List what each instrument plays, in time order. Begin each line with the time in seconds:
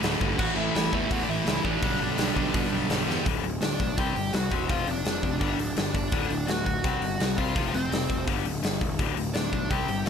0.02 picked electric bass D1, overdriven electric guitar D2 A2 D3, snare, open hi-hat
0.21 picked electric bass G1, overdriven electric guitar D2 A2 D3, kick
0.38 picked electric bass A1, overdriven electric guitar A2 E3 A3, lead electric guitar F#4 F#5, kick, crash
0.56 picked electric bass A1, overdriven electric guitar A2 E3 A3, lead electric guitar E4 E5
0.74 picked electric bass A1, overdriven electric guitar A2 E3 A3, snare, open hi-hat
0.93 picked electric bass E2, overdriven electric guitar A2 E3 A3, kick
1.11 picked electric bass E2, overdriven electric guitar A2 E3 A3, lead electric guitar F#4 F#5, kick, open hi-hat
1.23 lead electric guitar D5
1.29 picked electric bass A1, overdriven electric guitar A2 E3 A3, lead electric guitar E4 E5
1.46 picked electric bass C#2, overdriven electric guitar A2 E3 A3, snare, open hi-hat
1.64 picked electric bass A1, overdriven electric guitar A2 E3 A3, lead electric guitar D4 D5, kick
1.82 picked electric bass B1, overdriven electric guitar G2 D3 G3, kick, open hi-hat
2.00 picked electric bass B1, overdriven electric guitar G2 D3 G3
2.17 picked electric bass B1, overdriven electric guitar G2 D3 G3, snare, open hi-hat
2.35 picked electric bass B1, overdriven electric guitar G2 D3 G3, kick
2.54 overdriven electric guitar G2 D3 G3, picked electric bass B2, kick, open hi-hat
2.72 picked electric bass B1, overdriven electric guitar G2 D3 G3
2.90 picked electric bass B1, overdriven electric guitar G2 D3 G3, snare, open hi-hat
3.07 picked electric bass E2, overdriven electric guitar G2 D3 G3, snare
3.26 picked electric bass D1, overdriven electric guitar D2 A2 D3, kick, open hi-hat
3.44 picked electric bass D1, overdriven electric guitar D2 A2, open hi-hat
3.61 picked electric bass D1, overdriven electric guitar D2 A2, lead electric guitar D4 D5, snare, open hi-hat
3.80 picked electric bass B1, overdriven electric guitar D2 A2, kick, open hi-hat
3.98 picked electric bass C2, overdriven electric guitar C3 G3 C4, lead electric guitar G4 G5, kick, open hi-hat
4.15 picked electric bass G1, overdriven electric guitar C3 G3, open hi-hat
4.33 picked electric bass C2, overdriven electric guitar C3 G3, lead electric guitar F#4 F#5, snare, open hi-hat
4.51 picked electric bass E1, overdriven electric guitar C3 G3 C4, kick, open hi-hat
4.69 picked electric bass F1, overdriven electric guitar F2 C3 F3, lead electric guitar F4 F5, kick, open hi-hat
4.87 picked electric bass F1, overdriven electric guitar F2 C3, lead electric guitar D4 D5, open hi-hat
5.05 picked electric bass F1, overdriven electric guitar F2 C3, snare, open hi-hat
5.23 picked electric bass F1, overdriven electric guitar F2 C3, kick, open hi-hat
5.40 picked electric bass G1, overdriven electric guitar G2 D3 G3, kick, open hi-hat
5.58 picked electric bass D1, overdriven electric guitar G2 D3, open hi-hat
5.77 picked electric bass G1, overdriven electric guitar G2 D3, snare, open hi-hat
5.94 picked electric bass G1, overdriven electric guitar G2 D3, lead electric guitar D4 D5, kick, open hi-hat
6.12 picked electric bass D1, overdriven electric guitar D2 A2 D3, kick, open hi-hat
6.30 picked electric bass D1, overdriven electric guitar D2 A2, open hi-hat
6.47 picked electric bass D1, overdriven electric guitar D2 A2, lead electric guitar F#4 F#5, snare, open hi-hat
6.65 picked electric bass D1, overdriven electric guitar D2 A2, lead electric guitar F#4 F#5, kick, open hi-hat
6.84 picked electric bass C2, overdriven electric guitar C3 G3 C4, kick, open hi-hat
7.02 picked electric bass G1, overdriven electric guitar C3 G3, open hi-hat
7.20 picked electric bass C2, overdriven electric guitar C3 G3, snare, open hi-hat
7.37 picked electric bass C2, overdriven electric guitar C3 G3 C4, lead electric guitar F4 F5, kick, open hi-hat
7.55 picked electric bass F1, overdriven electric guitar F2 C3 F3, kick, open hi-hat
7.74 picked electric bass F1, overdriven electric guitar F2 C3, lead electric guitar C4 C5, open hi-hat
7.90 picked electric bass F1, overdriven electric guitar F2 C3, snare, open hi-hat
8.09 picked electric bass F1, overdriven electric guitar F2 C3, kick, open hi-hat
8.27 picked electric bass G1, overdriven electric guitar G2 D3 G3, kick, open hi-hat
8.45 picked electric bass D1, overdriven electric guitar G2 D3, open hi-hat
8.63 picked electric bass G1, overdriven electric guitar G2 D3, snare, open hi-hat
8.81 picked electric bass E1, overdriven electric guitar G2 D3, kick, open hi-hat
8.99 picked electric bass D1, overdriven electric guitar D2 A2 D3, kick, open hi-hat
9.17 picked electric bass D1, overdriven electric guitar D2 A2, open hi-hat
9.34 picked electric bass D1, overdriven electric guitar D2 A2, lead electric guitar D4 D5, snare, open hi-hat
9.52 picked electric bass B1, overdriven electric guitar D2 A2, kick, open hi-hat
9.70 picked electric bass C2, overdriven electric guitar C3 G3 C4, lead electric guitar G4 G5, kick, open hi-hat
9.88 picked electric bass G1, overdriven electric guitar C3 G3, open hi-hat
10.06 picked electric bass C2, overdriven electric guitar C3 G3, open hi-hat